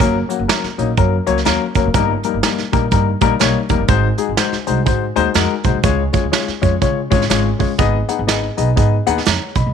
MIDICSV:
0, 0, Header, 1, 5, 480
1, 0, Start_track
1, 0, Time_signature, 4, 2, 24, 8
1, 0, Key_signature, 6, "major"
1, 0, Tempo, 487805
1, 9579, End_track
2, 0, Start_track
2, 0, Title_t, "Grand piano"
2, 0, Program_c, 0, 0
2, 0, Note_on_c, 0, 54, 93
2, 0, Note_on_c, 0, 58, 85
2, 0, Note_on_c, 0, 61, 86
2, 0, Note_on_c, 0, 70, 102
2, 162, Note_off_c, 0, 54, 0
2, 163, Note_off_c, 0, 61, 0
2, 164, Note_off_c, 0, 58, 0
2, 164, Note_off_c, 0, 70, 0
2, 283, Note_on_c, 0, 58, 70
2, 284, Note_on_c, 0, 54, 77
2, 285, Note_on_c, 0, 66, 83
2, 286, Note_on_c, 0, 61, 67
2, 392, Note_off_c, 0, 54, 0
2, 392, Note_off_c, 0, 58, 0
2, 393, Note_off_c, 0, 61, 0
2, 393, Note_off_c, 0, 66, 0
2, 472, Note_on_c, 0, 54, 72
2, 472, Note_on_c, 0, 58, 64
2, 476, Note_on_c, 0, 70, 85
2, 477, Note_on_c, 0, 61, 67
2, 640, Note_off_c, 0, 54, 0
2, 640, Note_off_c, 0, 58, 0
2, 642, Note_off_c, 0, 61, 0
2, 642, Note_off_c, 0, 70, 0
2, 768, Note_on_c, 0, 54, 77
2, 769, Note_on_c, 0, 58, 74
2, 770, Note_on_c, 0, 61, 70
2, 772, Note_on_c, 0, 63, 85
2, 873, Note_off_c, 0, 54, 0
2, 874, Note_off_c, 0, 58, 0
2, 875, Note_off_c, 0, 61, 0
2, 875, Note_off_c, 0, 63, 0
2, 958, Note_on_c, 0, 54, 78
2, 961, Note_on_c, 0, 58, 69
2, 962, Note_on_c, 0, 61, 68
2, 962, Note_on_c, 0, 70, 86
2, 1122, Note_off_c, 0, 54, 0
2, 1124, Note_off_c, 0, 58, 0
2, 1124, Note_off_c, 0, 61, 0
2, 1124, Note_off_c, 0, 70, 0
2, 1245, Note_on_c, 0, 54, 102
2, 1245, Note_on_c, 0, 58, 91
2, 1247, Note_on_c, 0, 73, 103
2, 1248, Note_on_c, 0, 61, 86
2, 1351, Note_off_c, 0, 54, 0
2, 1351, Note_off_c, 0, 58, 0
2, 1353, Note_off_c, 0, 61, 0
2, 1353, Note_off_c, 0, 73, 0
2, 1427, Note_on_c, 0, 54, 94
2, 1429, Note_on_c, 0, 58, 93
2, 1431, Note_on_c, 0, 61, 86
2, 1433, Note_on_c, 0, 70, 107
2, 1596, Note_off_c, 0, 54, 0
2, 1597, Note_off_c, 0, 58, 0
2, 1598, Note_off_c, 0, 61, 0
2, 1599, Note_off_c, 0, 70, 0
2, 1725, Note_on_c, 0, 54, 82
2, 1726, Note_on_c, 0, 58, 74
2, 1727, Note_on_c, 0, 61, 72
2, 1729, Note_on_c, 0, 70, 84
2, 1831, Note_off_c, 0, 54, 0
2, 1832, Note_off_c, 0, 58, 0
2, 1832, Note_off_c, 0, 61, 0
2, 1833, Note_off_c, 0, 70, 0
2, 1911, Note_on_c, 0, 58, 84
2, 1912, Note_on_c, 0, 55, 92
2, 1912, Note_on_c, 0, 63, 92
2, 1914, Note_on_c, 0, 70, 107
2, 2078, Note_off_c, 0, 55, 0
2, 2078, Note_off_c, 0, 58, 0
2, 2078, Note_off_c, 0, 63, 0
2, 2079, Note_off_c, 0, 70, 0
2, 2208, Note_on_c, 0, 55, 73
2, 2209, Note_on_c, 0, 58, 72
2, 2209, Note_on_c, 0, 63, 70
2, 2212, Note_on_c, 0, 70, 84
2, 2312, Note_off_c, 0, 55, 0
2, 2312, Note_off_c, 0, 58, 0
2, 2313, Note_off_c, 0, 63, 0
2, 2314, Note_off_c, 0, 70, 0
2, 2389, Note_on_c, 0, 55, 75
2, 2391, Note_on_c, 0, 63, 69
2, 2392, Note_on_c, 0, 58, 70
2, 2393, Note_on_c, 0, 70, 84
2, 2556, Note_off_c, 0, 55, 0
2, 2557, Note_off_c, 0, 63, 0
2, 2558, Note_off_c, 0, 58, 0
2, 2558, Note_off_c, 0, 70, 0
2, 2678, Note_on_c, 0, 55, 77
2, 2681, Note_on_c, 0, 58, 70
2, 2682, Note_on_c, 0, 63, 72
2, 2686, Note_on_c, 0, 70, 86
2, 2787, Note_off_c, 0, 55, 0
2, 2788, Note_off_c, 0, 58, 0
2, 2788, Note_off_c, 0, 63, 0
2, 2790, Note_off_c, 0, 70, 0
2, 2864, Note_on_c, 0, 55, 78
2, 2868, Note_on_c, 0, 58, 70
2, 2870, Note_on_c, 0, 63, 72
2, 2870, Note_on_c, 0, 70, 84
2, 3033, Note_off_c, 0, 55, 0
2, 3035, Note_off_c, 0, 58, 0
2, 3036, Note_off_c, 0, 63, 0
2, 3036, Note_off_c, 0, 70, 0
2, 3160, Note_on_c, 0, 55, 102
2, 3162, Note_on_c, 0, 58, 88
2, 3163, Note_on_c, 0, 63, 93
2, 3166, Note_on_c, 0, 70, 114
2, 3267, Note_off_c, 0, 55, 0
2, 3268, Note_off_c, 0, 58, 0
2, 3269, Note_off_c, 0, 63, 0
2, 3270, Note_off_c, 0, 70, 0
2, 3345, Note_on_c, 0, 58, 93
2, 3346, Note_on_c, 0, 55, 93
2, 3347, Note_on_c, 0, 73, 110
2, 3348, Note_on_c, 0, 63, 92
2, 3513, Note_off_c, 0, 58, 0
2, 3514, Note_off_c, 0, 55, 0
2, 3514, Note_off_c, 0, 73, 0
2, 3515, Note_off_c, 0, 63, 0
2, 3634, Note_on_c, 0, 55, 79
2, 3636, Note_on_c, 0, 63, 74
2, 3639, Note_on_c, 0, 58, 76
2, 3641, Note_on_c, 0, 70, 90
2, 3744, Note_off_c, 0, 55, 0
2, 3745, Note_off_c, 0, 63, 0
2, 3746, Note_off_c, 0, 58, 0
2, 3747, Note_off_c, 0, 70, 0
2, 3820, Note_on_c, 0, 63, 88
2, 3821, Note_on_c, 0, 66, 88
2, 3823, Note_on_c, 0, 56, 92
2, 3823, Note_on_c, 0, 72, 109
2, 3991, Note_off_c, 0, 63, 0
2, 3991, Note_off_c, 0, 66, 0
2, 3992, Note_off_c, 0, 56, 0
2, 3992, Note_off_c, 0, 72, 0
2, 4112, Note_on_c, 0, 56, 72
2, 4114, Note_on_c, 0, 63, 70
2, 4115, Note_on_c, 0, 66, 67
2, 4116, Note_on_c, 0, 68, 86
2, 4222, Note_off_c, 0, 56, 0
2, 4223, Note_off_c, 0, 63, 0
2, 4224, Note_off_c, 0, 66, 0
2, 4225, Note_off_c, 0, 68, 0
2, 4296, Note_on_c, 0, 56, 76
2, 4296, Note_on_c, 0, 63, 69
2, 4300, Note_on_c, 0, 66, 71
2, 4302, Note_on_c, 0, 72, 83
2, 4468, Note_off_c, 0, 56, 0
2, 4468, Note_off_c, 0, 63, 0
2, 4470, Note_off_c, 0, 66, 0
2, 4471, Note_off_c, 0, 72, 0
2, 4594, Note_on_c, 0, 63, 72
2, 4595, Note_on_c, 0, 56, 79
2, 4595, Note_on_c, 0, 66, 71
2, 4595, Note_on_c, 0, 72, 84
2, 4703, Note_off_c, 0, 63, 0
2, 4703, Note_off_c, 0, 72, 0
2, 4704, Note_off_c, 0, 56, 0
2, 4704, Note_off_c, 0, 66, 0
2, 4776, Note_on_c, 0, 56, 74
2, 4777, Note_on_c, 0, 63, 71
2, 4781, Note_on_c, 0, 66, 70
2, 4781, Note_on_c, 0, 72, 83
2, 4948, Note_off_c, 0, 56, 0
2, 4948, Note_off_c, 0, 63, 0
2, 4950, Note_off_c, 0, 72, 0
2, 4951, Note_off_c, 0, 66, 0
2, 5074, Note_on_c, 0, 56, 99
2, 5075, Note_on_c, 0, 63, 88
2, 5078, Note_on_c, 0, 66, 87
2, 5079, Note_on_c, 0, 72, 110
2, 5183, Note_off_c, 0, 56, 0
2, 5183, Note_off_c, 0, 63, 0
2, 5185, Note_off_c, 0, 66, 0
2, 5185, Note_off_c, 0, 72, 0
2, 5260, Note_on_c, 0, 56, 99
2, 5263, Note_on_c, 0, 63, 88
2, 5265, Note_on_c, 0, 66, 85
2, 5266, Note_on_c, 0, 70, 103
2, 5430, Note_off_c, 0, 56, 0
2, 5431, Note_off_c, 0, 63, 0
2, 5432, Note_off_c, 0, 66, 0
2, 5433, Note_off_c, 0, 70, 0
2, 5554, Note_on_c, 0, 56, 77
2, 5555, Note_on_c, 0, 63, 73
2, 5558, Note_on_c, 0, 66, 75
2, 5560, Note_on_c, 0, 72, 82
2, 5663, Note_off_c, 0, 56, 0
2, 5664, Note_off_c, 0, 63, 0
2, 5665, Note_off_c, 0, 66, 0
2, 5666, Note_off_c, 0, 72, 0
2, 5741, Note_on_c, 0, 56, 101
2, 5741, Note_on_c, 0, 61, 81
2, 5743, Note_on_c, 0, 65, 81
2, 5747, Note_on_c, 0, 73, 108
2, 5910, Note_off_c, 0, 56, 0
2, 5910, Note_off_c, 0, 61, 0
2, 5911, Note_off_c, 0, 65, 0
2, 5913, Note_off_c, 0, 73, 0
2, 6028, Note_on_c, 0, 56, 80
2, 6029, Note_on_c, 0, 61, 73
2, 6031, Note_on_c, 0, 65, 67
2, 6033, Note_on_c, 0, 73, 87
2, 6140, Note_off_c, 0, 56, 0
2, 6140, Note_off_c, 0, 61, 0
2, 6141, Note_off_c, 0, 65, 0
2, 6143, Note_off_c, 0, 73, 0
2, 6215, Note_on_c, 0, 56, 73
2, 6216, Note_on_c, 0, 65, 72
2, 6217, Note_on_c, 0, 61, 69
2, 6220, Note_on_c, 0, 73, 77
2, 6387, Note_off_c, 0, 56, 0
2, 6388, Note_off_c, 0, 61, 0
2, 6388, Note_off_c, 0, 65, 0
2, 6390, Note_off_c, 0, 73, 0
2, 6508, Note_on_c, 0, 56, 80
2, 6509, Note_on_c, 0, 61, 71
2, 6510, Note_on_c, 0, 65, 69
2, 6515, Note_on_c, 0, 73, 84
2, 6620, Note_off_c, 0, 56, 0
2, 6621, Note_off_c, 0, 61, 0
2, 6621, Note_off_c, 0, 65, 0
2, 6623, Note_off_c, 0, 73, 0
2, 6702, Note_on_c, 0, 56, 78
2, 6705, Note_on_c, 0, 61, 70
2, 6705, Note_on_c, 0, 65, 71
2, 6709, Note_on_c, 0, 73, 88
2, 6871, Note_off_c, 0, 56, 0
2, 6873, Note_off_c, 0, 61, 0
2, 6873, Note_off_c, 0, 65, 0
2, 6874, Note_off_c, 0, 73, 0
2, 6990, Note_on_c, 0, 56, 97
2, 6994, Note_on_c, 0, 61, 89
2, 6994, Note_on_c, 0, 65, 87
2, 6998, Note_on_c, 0, 73, 107
2, 7101, Note_off_c, 0, 56, 0
2, 7103, Note_off_c, 0, 61, 0
2, 7103, Note_off_c, 0, 65, 0
2, 7105, Note_off_c, 0, 73, 0
2, 7180, Note_on_c, 0, 56, 100
2, 7181, Note_on_c, 0, 65, 90
2, 7182, Note_on_c, 0, 61, 84
2, 7185, Note_on_c, 0, 73, 105
2, 7350, Note_off_c, 0, 56, 0
2, 7351, Note_off_c, 0, 61, 0
2, 7351, Note_off_c, 0, 65, 0
2, 7353, Note_off_c, 0, 73, 0
2, 7469, Note_on_c, 0, 56, 78
2, 7469, Note_on_c, 0, 61, 73
2, 7471, Note_on_c, 0, 65, 67
2, 7472, Note_on_c, 0, 73, 85
2, 7581, Note_off_c, 0, 56, 0
2, 7581, Note_off_c, 0, 61, 0
2, 7582, Note_off_c, 0, 65, 0
2, 7583, Note_off_c, 0, 73, 0
2, 7660, Note_on_c, 0, 59, 95
2, 7661, Note_on_c, 0, 63, 82
2, 7663, Note_on_c, 0, 68, 86
2, 7664, Note_on_c, 0, 75, 110
2, 7831, Note_off_c, 0, 59, 0
2, 7831, Note_off_c, 0, 63, 0
2, 7832, Note_off_c, 0, 68, 0
2, 7833, Note_off_c, 0, 75, 0
2, 7955, Note_on_c, 0, 59, 72
2, 7956, Note_on_c, 0, 63, 69
2, 7958, Note_on_c, 0, 78, 78
2, 7959, Note_on_c, 0, 68, 70
2, 8065, Note_off_c, 0, 59, 0
2, 8065, Note_off_c, 0, 63, 0
2, 8066, Note_off_c, 0, 78, 0
2, 8067, Note_off_c, 0, 68, 0
2, 8138, Note_on_c, 0, 59, 70
2, 8141, Note_on_c, 0, 68, 72
2, 8142, Note_on_c, 0, 63, 69
2, 8144, Note_on_c, 0, 75, 83
2, 8310, Note_off_c, 0, 59, 0
2, 8312, Note_off_c, 0, 63, 0
2, 8312, Note_off_c, 0, 68, 0
2, 8314, Note_off_c, 0, 75, 0
2, 8436, Note_on_c, 0, 63, 71
2, 8437, Note_on_c, 0, 59, 76
2, 8439, Note_on_c, 0, 68, 71
2, 8442, Note_on_c, 0, 75, 83
2, 8546, Note_off_c, 0, 59, 0
2, 8546, Note_off_c, 0, 63, 0
2, 8547, Note_off_c, 0, 68, 0
2, 8549, Note_off_c, 0, 75, 0
2, 8620, Note_on_c, 0, 59, 78
2, 8620, Note_on_c, 0, 63, 68
2, 8623, Note_on_c, 0, 68, 74
2, 8626, Note_on_c, 0, 75, 86
2, 8792, Note_off_c, 0, 59, 0
2, 8792, Note_off_c, 0, 63, 0
2, 8794, Note_off_c, 0, 68, 0
2, 8795, Note_off_c, 0, 75, 0
2, 8920, Note_on_c, 0, 68, 89
2, 8921, Note_on_c, 0, 59, 99
2, 8921, Note_on_c, 0, 63, 90
2, 8923, Note_on_c, 0, 78, 108
2, 9029, Note_off_c, 0, 59, 0
2, 9029, Note_off_c, 0, 63, 0
2, 9029, Note_off_c, 0, 68, 0
2, 9030, Note_off_c, 0, 78, 0
2, 9110, Note_on_c, 0, 82, 62
2, 9114, Note_on_c, 0, 73, 53
2, 9391, Note_off_c, 0, 82, 0
2, 9393, Note_off_c, 0, 73, 0
2, 9407, Note_on_c, 0, 83, 66
2, 9411, Note_on_c, 0, 75, 58
2, 9576, Note_off_c, 0, 75, 0
2, 9579, Note_off_c, 0, 83, 0
2, 9579, End_track
3, 0, Start_track
3, 0, Title_t, "Upright bass"
3, 0, Program_c, 1, 32
3, 2, Note_on_c, 1, 30, 95
3, 211, Note_off_c, 1, 30, 0
3, 387, Note_on_c, 1, 30, 80
3, 452, Note_off_c, 1, 30, 0
3, 770, Note_on_c, 1, 34, 80
3, 904, Note_off_c, 1, 34, 0
3, 961, Note_on_c, 1, 42, 98
3, 1170, Note_off_c, 1, 42, 0
3, 1254, Note_on_c, 1, 37, 78
3, 1386, Note_off_c, 1, 37, 0
3, 1439, Note_on_c, 1, 39, 82
3, 1543, Note_off_c, 1, 39, 0
3, 1727, Note_on_c, 1, 30, 83
3, 1794, Note_off_c, 1, 30, 0
3, 1824, Note_on_c, 1, 29, 85
3, 1889, Note_off_c, 1, 29, 0
3, 1913, Note_on_c, 1, 31, 89
3, 2124, Note_off_c, 1, 31, 0
3, 2303, Note_on_c, 1, 31, 75
3, 2368, Note_off_c, 1, 31, 0
3, 2692, Note_on_c, 1, 34, 78
3, 2823, Note_off_c, 1, 34, 0
3, 2873, Note_on_c, 1, 43, 93
3, 3083, Note_off_c, 1, 43, 0
3, 3166, Note_on_c, 1, 34, 83
3, 3299, Note_off_c, 1, 34, 0
3, 3355, Note_on_c, 1, 35, 76
3, 3459, Note_off_c, 1, 35, 0
3, 3643, Note_on_c, 1, 29, 80
3, 3710, Note_off_c, 1, 29, 0
3, 3738, Note_on_c, 1, 31, 76
3, 3804, Note_off_c, 1, 31, 0
3, 3823, Note_on_c, 1, 32, 97
3, 4037, Note_off_c, 1, 32, 0
3, 4220, Note_on_c, 1, 32, 79
3, 4285, Note_off_c, 1, 32, 0
3, 4606, Note_on_c, 1, 36, 81
3, 4738, Note_off_c, 1, 36, 0
3, 4788, Note_on_c, 1, 44, 93
3, 4999, Note_off_c, 1, 44, 0
3, 5080, Note_on_c, 1, 39, 81
3, 5214, Note_off_c, 1, 39, 0
3, 5264, Note_on_c, 1, 41, 88
3, 5371, Note_off_c, 1, 41, 0
3, 5555, Note_on_c, 1, 34, 86
3, 5624, Note_off_c, 1, 34, 0
3, 5656, Note_on_c, 1, 36, 78
3, 5722, Note_off_c, 1, 36, 0
3, 5745, Note_on_c, 1, 37, 105
3, 5957, Note_off_c, 1, 37, 0
3, 6138, Note_on_c, 1, 37, 79
3, 6204, Note_off_c, 1, 37, 0
3, 6525, Note_on_c, 1, 41, 80
3, 6658, Note_off_c, 1, 41, 0
3, 6710, Note_on_c, 1, 49, 89
3, 6921, Note_off_c, 1, 49, 0
3, 7005, Note_on_c, 1, 32, 89
3, 7138, Note_off_c, 1, 32, 0
3, 7186, Note_on_c, 1, 32, 82
3, 7399, Note_off_c, 1, 32, 0
3, 7482, Note_on_c, 1, 49, 82
3, 7617, Note_off_c, 1, 49, 0
3, 7667, Note_on_c, 1, 32, 95
3, 7880, Note_off_c, 1, 32, 0
3, 8059, Note_on_c, 1, 32, 85
3, 8338, Note_off_c, 1, 32, 0
3, 8445, Note_on_c, 1, 35, 80
3, 8579, Note_off_c, 1, 35, 0
3, 8631, Note_on_c, 1, 44, 92
3, 8843, Note_off_c, 1, 44, 0
3, 8928, Note_on_c, 1, 39, 91
3, 9062, Note_off_c, 1, 39, 0
3, 9120, Note_on_c, 1, 41, 84
3, 9223, Note_off_c, 1, 41, 0
3, 9404, Note_on_c, 1, 35, 88
3, 9473, Note_off_c, 1, 35, 0
3, 9509, Note_on_c, 1, 37, 83
3, 9574, Note_off_c, 1, 37, 0
3, 9579, End_track
4, 0, Start_track
4, 0, Title_t, "Muted upright bass strokes"
4, 626, Note_on_c, 9, 29, 41
4, 725, Note_off_c, 9, 29, 0
4, 2543, Note_on_c, 9, 29, 42
4, 2642, Note_off_c, 9, 29, 0
4, 4455, Note_on_c, 9, 29, 39
4, 4554, Note_off_c, 9, 29, 0
4, 6376, Note_on_c, 9, 29, 41
4, 6474, Note_off_c, 9, 29, 0
4, 9579, End_track
5, 0, Start_track
5, 0, Title_t, "Drums"
5, 0, Note_on_c, 9, 36, 112
5, 0, Note_on_c, 9, 42, 86
5, 98, Note_off_c, 9, 36, 0
5, 99, Note_off_c, 9, 42, 0
5, 292, Note_on_c, 9, 42, 71
5, 391, Note_off_c, 9, 42, 0
5, 484, Note_on_c, 9, 42, 85
5, 485, Note_on_c, 9, 38, 104
5, 582, Note_off_c, 9, 42, 0
5, 583, Note_off_c, 9, 38, 0
5, 630, Note_on_c, 9, 38, 30
5, 729, Note_off_c, 9, 38, 0
5, 774, Note_on_c, 9, 42, 67
5, 873, Note_off_c, 9, 42, 0
5, 955, Note_on_c, 9, 42, 64
5, 959, Note_on_c, 9, 36, 80
5, 1054, Note_off_c, 9, 42, 0
5, 1058, Note_off_c, 9, 36, 0
5, 1248, Note_on_c, 9, 42, 74
5, 1347, Note_off_c, 9, 42, 0
5, 1355, Note_on_c, 9, 38, 31
5, 1427, Note_on_c, 9, 42, 81
5, 1440, Note_off_c, 9, 38, 0
5, 1440, Note_on_c, 9, 38, 87
5, 1525, Note_off_c, 9, 42, 0
5, 1538, Note_off_c, 9, 38, 0
5, 1718, Note_on_c, 9, 42, 62
5, 1726, Note_on_c, 9, 36, 70
5, 1816, Note_off_c, 9, 42, 0
5, 1824, Note_off_c, 9, 36, 0
5, 1909, Note_on_c, 9, 42, 95
5, 1912, Note_on_c, 9, 36, 111
5, 2007, Note_off_c, 9, 42, 0
5, 2010, Note_off_c, 9, 36, 0
5, 2198, Note_on_c, 9, 42, 72
5, 2296, Note_off_c, 9, 42, 0
5, 2391, Note_on_c, 9, 42, 86
5, 2392, Note_on_c, 9, 38, 103
5, 2489, Note_off_c, 9, 42, 0
5, 2490, Note_off_c, 9, 38, 0
5, 2541, Note_on_c, 9, 38, 31
5, 2639, Note_off_c, 9, 38, 0
5, 2682, Note_on_c, 9, 42, 66
5, 2689, Note_on_c, 9, 36, 81
5, 2781, Note_off_c, 9, 42, 0
5, 2787, Note_off_c, 9, 36, 0
5, 2865, Note_on_c, 9, 42, 70
5, 2872, Note_on_c, 9, 36, 80
5, 2963, Note_off_c, 9, 42, 0
5, 2970, Note_off_c, 9, 36, 0
5, 3158, Note_on_c, 9, 42, 74
5, 3164, Note_on_c, 9, 36, 86
5, 3256, Note_off_c, 9, 42, 0
5, 3263, Note_off_c, 9, 36, 0
5, 3340, Note_on_c, 9, 42, 79
5, 3353, Note_on_c, 9, 38, 88
5, 3439, Note_off_c, 9, 42, 0
5, 3451, Note_off_c, 9, 38, 0
5, 3631, Note_on_c, 9, 42, 68
5, 3639, Note_on_c, 9, 36, 68
5, 3729, Note_off_c, 9, 42, 0
5, 3738, Note_off_c, 9, 36, 0
5, 3819, Note_on_c, 9, 42, 94
5, 3824, Note_on_c, 9, 36, 120
5, 3917, Note_off_c, 9, 42, 0
5, 3923, Note_off_c, 9, 36, 0
5, 4111, Note_on_c, 9, 42, 73
5, 4209, Note_off_c, 9, 42, 0
5, 4302, Note_on_c, 9, 42, 85
5, 4303, Note_on_c, 9, 38, 101
5, 4400, Note_off_c, 9, 42, 0
5, 4402, Note_off_c, 9, 38, 0
5, 4455, Note_on_c, 9, 38, 31
5, 4553, Note_off_c, 9, 38, 0
5, 4594, Note_on_c, 9, 42, 69
5, 4692, Note_off_c, 9, 42, 0
5, 4782, Note_on_c, 9, 42, 67
5, 4787, Note_on_c, 9, 36, 79
5, 4880, Note_off_c, 9, 42, 0
5, 4886, Note_off_c, 9, 36, 0
5, 5077, Note_on_c, 9, 42, 75
5, 5176, Note_off_c, 9, 42, 0
5, 5256, Note_on_c, 9, 42, 84
5, 5269, Note_on_c, 9, 38, 88
5, 5354, Note_off_c, 9, 42, 0
5, 5367, Note_off_c, 9, 38, 0
5, 5546, Note_on_c, 9, 42, 65
5, 5556, Note_on_c, 9, 36, 72
5, 5645, Note_off_c, 9, 42, 0
5, 5654, Note_off_c, 9, 36, 0
5, 5739, Note_on_c, 9, 42, 91
5, 5744, Note_on_c, 9, 36, 112
5, 5838, Note_off_c, 9, 42, 0
5, 5842, Note_off_c, 9, 36, 0
5, 6032, Note_on_c, 9, 42, 72
5, 6041, Note_on_c, 9, 36, 86
5, 6131, Note_off_c, 9, 42, 0
5, 6140, Note_off_c, 9, 36, 0
5, 6228, Note_on_c, 9, 42, 86
5, 6229, Note_on_c, 9, 38, 105
5, 6326, Note_off_c, 9, 42, 0
5, 6328, Note_off_c, 9, 38, 0
5, 6378, Note_on_c, 9, 38, 31
5, 6476, Note_off_c, 9, 38, 0
5, 6518, Note_on_c, 9, 42, 68
5, 6523, Note_on_c, 9, 36, 78
5, 6616, Note_off_c, 9, 42, 0
5, 6622, Note_off_c, 9, 36, 0
5, 6704, Note_on_c, 9, 42, 67
5, 6709, Note_on_c, 9, 36, 77
5, 6803, Note_off_c, 9, 42, 0
5, 6807, Note_off_c, 9, 36, 0
5, 7001, Note_on_c, 9, 42, 73
5, 7003, Note_on_c, 9, 36, 89
5, 7099, Note_off_c, 9, 42, 0
5, 7101, Note_off_c, 9, 36, 0
5, 7103, Note_on_c, 9, 38, 30
5, 7180, Note_on_c, 9, 42, 83
5, 7193, Note_off_c, 9, 38, 0
5, 7193, Note_on_c, 9, 38, 89
5, 7279, Note_off_c, 9, 42, 0
5, 7291, Note_off_c, 9, 38, 0
5, 7473, Note_on_c, 9, 46, 44
5, 7479, Note_on_c, 9, 36, 73
5, 7571, Note_off_c, 9, 46, 0
5, 7577, Note_off_c, 9, 36, 0
5, 7660, Note_on_c, 9, 42, 94
5, 7665, Note_on_c, 9, 36, 118
5, 7759, Note_off_c, 9, 42, 0
5, 7763, Note_off_c, 9, 36, 0
5, 7957, Note_on_c, 9, 42, 75
5, 8055, Note_off_c, 9, 42, 0
5, 8151, Note_on_c, 9, 42, 81
5, 8152, Note_on_c, 9, 38, 111
5, 8249, Note_off_c, 9, 42, 0
5, 8251, Note_off_c, 9, 38, 0
5, 8439, Note_on_c, 9, 42, 64
5, 8538, Note_off_c, 9, 42, 0
5, 8630, Note_on_c, 9, 42, 72
5, 8632, Note_on_c, 9, 36, 74
5, 8729, Note_off_c, 9, 42, 0
5, 8730, Note_off_c, 9, 36, 0
5, 8922, Note_on_c, 9, 42, 69
5, 9021, Note_off_c, 9, 42, 0
5, 9033, Note_on_c, 9, 38, 31
5, 9105, Note_on_c, 9, 42, 81
5, 9117, Note_off_c, 9, 38, 0
5, 9117, Note_on_c, 9, 38, 92
5, 9203, Note_off_c, 9, 42, 0
5, 9216, Note_off_c, 9, 38, 0
5, 9398, Note_on_c, 9, 42, 62
5, 9404, Note_on_c, 9, 36, 72
5, 9497, Note_off_c, 9, 42, 0
5, 9502, Note_off_c, 9, 36, 0
5, 9579, End_track
0, 0, End_of_file